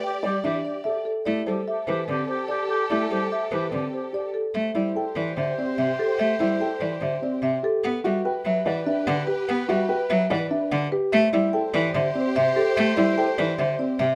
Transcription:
0.00 1.02 G4 medium
0.00 1.02 D5 medium
0.00 0.30 G5 medium
0.05 0.19 G4 medium
0.23 0.39 G3 medium
0.23 0.39 G4 medium
0.23 0.50 D5 medium
0.44 0.59 E3 medium
0.44 0.71 D4 medium
0.44 0.59 G4 medium
0.44 0.71 E5 medium
0.65 0.80 G4 soft
0.65 0.91 D5 medium
0.84 1.01 G4 soft
0.84 1.12 A4 medium
0.84 1.12 E5 medium
1.05 1.32 A4 medium
1.25 1.42 A3 medium
1.25 1.53 E4 medium
1.25 4.31 G4 medium
1.25 1.42 G4 soft
1.25 4.31 A4 medium
1.25 1.53 D5 medium
1.46 1.62 G3 medium
1.46 1.62 G4 medium
1.46 1.74 A4 medium
1.46 1.73 C5 medium
1.68 1.82 G4 medium
1.68 1.94 E5 medium
1.87 2.03 E3 medium
1.87 2.03 G4 medium
1.87 2.15 B4 medium
1.87 2.14 C5 medium
2.08 2.24 D3 medium
2.08 2.35 C4 medium
2.08 2.23 G4 medium
2.08 2.35 D5 medium
2.29 2.44 G4 medium
2.29 2.56 C5 medium
2.48 2.76 G4 medium
2.48 2.65 G4 medium
2.48 2.76 D5 loud
2.69 2.85 G4 medium
2.69 2.96 A4 medium
2.90 3.06 A3 medium
2.90 3.17 E4 medium
2.90 3.05 G4 medium
2.90 3.17 D5 medium
3.10 3.26 G3 medium
3.10 3.25 G4 medium
3.10 3.38 A4 medium
3.10 3.38 C5 medium
3.31 3.46 G4 medium
3.31 3.59 E5 medium
3.51 3.67 E3 medium
3.51 3.67 G4 medium
3.51 3.79 B4 medium
3.51 3.79 C5 medium
3.72 3.88 D3 medium
3.72 3.99 C4 medium
3.72 3.88 G4 medium
3.72 3.99 D5 medium
3.93 4.08 G4 soft
3.93 4.20 C5 medium
4.13 4.40 G4 medium
4.13 4.29 G4 soft
4.13 4.41 D5 medium
4.34 4.61 A4 medium
4.54 4.70 A3 medium
4.54 7.59 G4 medium
4.54 7.59 C5 medium
4.54 4.82 E5 medium
4.75 4.90 G3 medium
4.75 5.02 E4 loud
4.75 5.03 D5 medium
4.95 5.23 A4 medium
4.95 5.23 G5 medium
5.16 5.31 E3 medium
5.16 5.43 D5 medium
5.37 5.52 D3 medium
5.37 5.64 C5 medium
5.37 5.64 E5 medium
5.58 5.85 C4 medium
5.58 5.85 D5 medium
5.78 5.93 C3 medium
5.78 6.05 E5 medium
5.99 6.26 G4 medium
5.99 6.26 A4 medium
6.19 6.35 A3 medium
6.19 6.46 E5 loud
6.39 6.55 G3 medium
6.39 6.67 E4 loud
6.39 6.67 D5 medium
6.60 6.87 A4 medium
6.60 6.88 G5 medium
6.80 6.96 E3 medium
6.80 7.08 D5 loud
7.01 7.17 D3 medium
7.01 7.28 C5 medium
7.01 7.29 E5 medium
7.22 7.49 C4 medium
7.22 7.49 D5 medium
7.42 7.58 C3 medium
7.42 7.70 E5 loud
7.63 7.90 G4 medium
7.63 7.90 A4 medium
7.84 7.99 B3 loud
7.84 10.88 G4 medium
7.84 10.88 B4 medium
7.84 8.11 F#5 loud
8.04 8.20 G3 medium
8.04 8.31 F#4 loud
8.04 8.31 E5 medium
8.25 8.52 B4 medium
8.25 8.52 G5 medium
8.45 8.61 F#3 medium
8.45 8.72 E5 loud
8.66 8.81 E3 medium
8.66 8.93 D5 medium
8.66 8.93 F#5 medium
8.86 9.13 D4 medium
8.86 9.13 E5 medium
9.07 9.22 D3 loud
9.07 9.34 F#5 loud
9.27 9.54 G4 medium
9.27 9.54 B4 medium
9.49 9.64 B3 loud
9.49 9.75 F#5 loud
9.69 9.84 G3 medium
9.69 9.95 F#4 loud
9.69 9.96 E5 medium
9.89 10.16 B4 medium
9.89 10.16 G5 medium
10.10 10.25 F#3 loud
10.10 10.37 E5 loud
10.30 10.46 E3 medium
10.30 10.57 D5 medium
10.30 10.57 F#5 medium
10.51 10.78 D4 medium
10.51 10.78 E5 medium
10.72 10.87 D3 loud
10.72 10.98 F#5 loud
10.92 11.19 G4 medium
10.92 11.19 B4 medium
11.12 11.28 A3 loud
11.12 14.15 G4 loud
11.12 14.15 C5 loud
11.12 11.39 E5 loud
11.33 11.48 G3 medium
11.33 11.60 E4 loud
11.33 11.60 D5 medium
11.53 11.80 A4 medium
11.53 11.80 G5 medium
11.74 11.89 E3 loud
11.74 12.01 D5 loud
11.94 12.10 D3 medium
11.94 12.21 C5 medium
11.94 12.22 E5 medium
12.15 12.42 C4 medium
12.15 12.42 D5 medium
12.36 12.51 C3 loud
12.36 12.63 E5 loud
12.56 12.83 G4 medium
12.56 12.83 A4 medium
12.76 12.92 A3 loud
12.76 13.03 E5 loud
12.97 13.13 G3 medium
12.97 13.24 E4 loud
12.97 13.24 D5 medium
13.17 13.45 A4 medium
13.17 13.45 G5 loud
13.38 13.54 E3 loud
13.38 13.65 D5 loud
13.58 13.74 D3 medium
13.58 13.86 C5 medium
13.58 13.86 E5 medium
13.79 14.06 C4 medium
13.79 14.06 D5 medium
13.99 14.15 C3 loud
13.99 14.15 E5 loud

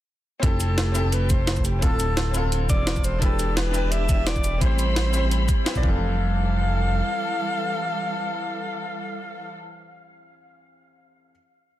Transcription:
0.40 1.03 F1 loud
0.40 1.81 A3 medium
0.40 0.90 C4 medium
0.40 0.92 E4 medium
0.40 1.81 G4 medium
0.40 1.14 A4 loud
0.40 kick loud
0.40 closed hi-hat loud
0.44 0.94 G4 medium
0.44 0.95 A4 loud
0.60 closed hi-hat medium
0.60 cabasa medium
0.78 snare loud
0.78 closed hi-hat loud
0.92 1.77 C4 loud
0.92 1.79 E4 medium
0.92 closed hi-hat medium
0.92 cabasa medium
0.96 1.81 G4 medium
0.96 1.82 A4 loud
1.05 1.84 F1 medium
1.12 1.32 B4 loud
1.12 closed hi-hat loud
1.30 1.67 C5 loud
1.30 kick loud
1.30 closed hi-hat medium
1.30 cabasa medium
1.47 snare loud
1.47 closed hi-hat loud
1.57 kick medium
1.57 cabasa soft
1.65 1.82 G4 medium
1.65 closed hi-hat medium
1.65 cabasa medium
1.79 2.42 D1 medium
1.79 2.30 C4 medium
1.79 3.20 C4 medium
1.79 2.32 E4 medium
1.79 2.48 A4 loud
1.79 kick loud
1.79 closed hi-hat loud
1.83 2.33 F4 medium
1.83 2.34 A4 medium
2.00 closed hi-hat medium
2.00 cabasa medium
2.17 snare loud
2.17 closed hi-hat loud
2.31 3.18 C4 medium
2.31 3.19 E4 medium
2.31 closed hi-hat medium
2.31 cabasa medium
2.36 3.20 F4 medium
2.36 3.21 A4 loud
2.44 2.68 D1 medium
2.52 closed hi-hat loud
2.69 3.21 E1 medium
2.69 3.06 D5 loud
2.69 kick loud
2.69 closed hi-hat medium
2.69 cabasa medium
2.87 snare loud
2.87 closed hi-hat loud
2.96 kick medium
2.96 cabasa soft
3.04 3.23 C5 loud
3.04 closed hi-hat medium
3.04 cabasa medium
3.19 3.82 E1 loud
3.19 3.69 D4 medium
3.19 4.60 D4 medium
3.19 3.72 E4 medium
3.19 4.60 G4 medium
3.19 3.58 A4 loud
3.19 kick loud
3.19 closed hi-hat medium
3.23 3.73 G4 medium
3.23 3.74 B4 medium
3.39 closed hi-hat medium
3.39 cabasa medium
3.57 3.93 B4 loud
3.57 snare loud
3.57 closed hi-hat loud
3.71 4.58 D4 medium
3.71 4.59 E4 medium
3.71 closed hi-hat medium
3.71 cabasa medium
3.75 4.60 G4 medium
3.75 4.61 B4 loud
3.84 4.63 E1 medium
3.92 4.28 E5 loud
3.92 closed hi-hat medium
4.09 kick loud
4.09 closed hi-hat medium
4.09 cabasa medium
4.26 4.61 D5 loud
4.26 snare loud
4.26 closed hi-hat loud
4.36 kick medium
4.36 cabasa soft
4.44 closed hi-hat medium
4.44 cabasa medium
4.58 5.22 A1 medium
4.58 5.82 G3 medium
4.58 5.09 C4 medium
4.58 5.82 C4 medium
4.58 5.11 E4 medium
4.58 5.62 C5 loud
4.58 5.82 B5 medium
4.58 kick loud
4.58 closed hi-hat loud
4.62 5.12 G4 medium
4.62 5.13 C5 medium
4.79 closed hi-hat medium
4.79 cabasa medium
4.96 snare loud
4.96 closed hi-hat medium
5.11 5.63 C4 loud
5.11 5.64 E4 medium
5.11 closed hi-hat medium
5.11 cabasa medium
5.15 5.65 G4 medium
5.15 5.66 C5 loud
5.23 5.47 A1 medium
5.31 closed hi-hat medium
5.49 kick loud
5.49 closed hi-hat medium
5.49 cabasa medium
5.65 5.72 C4 medium
5.65 5.73 E4 medium
5.65 5.73 G4 medium
5.65 5.74 B4 loud
5.65 snare loud
5.65 closed hi-hat loud
5.74 5.83 B1 medium
5.74 5.77 C4 loud
5.74 5.83 E4 medium
5.74 5.84 G4 medium
5.74 5.84 D5 loud
5.74 kick medium
5.74 cabasa soft
5.79 9.56 E3 medium
5.79 9.53 C4 medium
5.83 7.02 F1 loud
5.83 9.56 E3 medium
5.83 9.56 G3 medium
5.83 9.60 G4 medium
5.83 9.56 A4 medium
5.83 9.56 F5 loud
5.83 kick loud
5.89 9.63 A4 medium

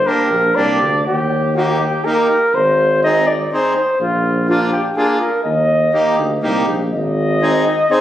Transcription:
0.06 0.28 A#3 medium
0.06 0.28 D4 soft
0.06 0.29 G4 medium
0.06 0.57 A#4 medium
0.31 0.53 A#1 medium
0.56 0.79 C2 medium
0.56 0.78 A#3 soft
0.56 0.79 D4 soft
0.56 0.79 G4 medium
0.56 1.06 D5 medium
0.81 1.03 D2 medium
1.05 2.02 D#2 medium
1.05 1.53 G4 medium
1.56 1.78 A#3 soft
1.56 1.79 D#4 medium
1.56 2.06 G4 medium
1.56 1.79 G4 soft
2.05 2.27 A#3 soft
2.05 2.27 D#4 medium
2.05 2.28 G4 medium
2.05 2.56 A#4 medium
2.54 3.49 G#1 medium
2.54 3.03 C5 medium
3.03 3.25 C4 medium
3.03 3.25 D#4 soft
3.03 3.26 G#4 medium
3.03 3.29 D#5 loud
3.27 3.51 D5 medium
3.52 3.73 C4 medium
3.52 3.74 D#4 soft
3.52 3.74 G#4 medium
3.52 3.74 C5 medium
3.77 3.99 C5 medium
4.00 4.94 A#1 medium
4.00 4.45 F4 medium
4.49 4.70 A#3 medium
4.49 4.70 D4 medium
4.49 4.60 F4 medium
4.49 4.71 F4 medium
4.72 4.83 G4 medium
4.96 5.18 A#3 medium
4.96 5.18 D4 medium
4.96 5.19 F4 medium
4.96 5.19 G#4 medium
5.21 5.43 A#4 medium
5.44 5.93 D#2 medium
5.44 6.39 D#5 medium
5.93 6.16 A#3 medium
5.93 6.16 D#4 soft
5.93 6.16 G4 medium
6.18 6.40 D2 medium
6.42 6.66 C2 medium
6.42 6.65 A#3 medium
6.42 6.66 D#4 medium
6.42 6.66 G4 medium
6.67 6.90 A#1 medium
6.92 7.89 G#1 medium
6.92 7.93 D#5 medium
7.42 7.64 C4 medium
7.42 7.65 D#4 soft
7.42 7.65 G#4 medium
7.90 8.01 C4 medium
7.90 8.01 D#4 medium
7.90 8.01 G#4 medium
7.90 8.01 C5 medium

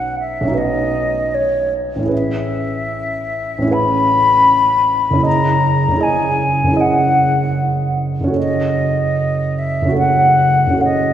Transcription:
0.00 0.40 B1 soft
0.00 0.43 C#4 soft
0.00 0.46 D#4 soft
0.00 0.49 F#4 soft
0.00 0.52 B4 soft
0.00 0.19 F#5 soft
0.19 0.58 E5 soft
0.41 1.99 B1 soft
0.41 1.98 C#4 soft
0.48 2.02 D#4 soft
0.48 2.04 F#4 soft
0.54 2.06 B4 soft
0.54 1.35 D#5 medium
1.34 1.73 C#5 soft
1.96 3.57 A1 soft
1.96 3.60 C#4 soft
2.02 3.63 E4 soft
2.02 3.66 G#4 soft
2.08 3.68 B4 soft
2.08 3.74 E5 medium
3.58 5.14 A1 soft
3.58 5.12 C#4 soft
3.65 5.15 E4 soft
3.65 5.19 G#4 soft
3.71 5.21 B4 soft
3.71 5.25 B5 medium
5.10 5.87 F#1 soft
5.10 5.90 C#4 soft
5.17 5.93 E4 soft
5.17 5.96 G#4 soft
5.23 5.99 D#5 soft
5.23 6.04 A#5 medium
5.88 6.62 F#1 soft
5.88 6.66 C#4 soft
5.94 6.69 E4 soft
5.94 6.72 G#4 soft
6.01 6.75 D#5 soft
6.01 6.82 G#5 soft
6.64 8.19 F#1 soft
6.64 8.22 C#4 soft
6.70 8.28 E4 soft
6.70 8.30 G#4 soft
6.77 8.31 D#5 soft
6.77 7.97 F#5 medium
8.21 9.80 F#1 soft
8.21 9.84 C#4 soft
8.27 9.87 F#4 soft
8.27 9.90 A4 soft
8.33 9.92 C#5 soft
8.33 9.59 D#5 medium
9.58 9.97 E5 soft
9.82 10.66 F#1 soft
9.82 10.69 C#4 soft
9.88 10.72 F#4 soft
9.88 10.75 A4 soft
9.95 10.78 C#5 soft
9.95 10.81 F#5 medium
10.67 11.13 F#1 soft
10.67 11.13 C#4 soft
10.73 11.13 F#4 soft
10.73 11.13 A4 soft
10.80 11.13 C#5 soft
10.80 11.13 D#5 medium

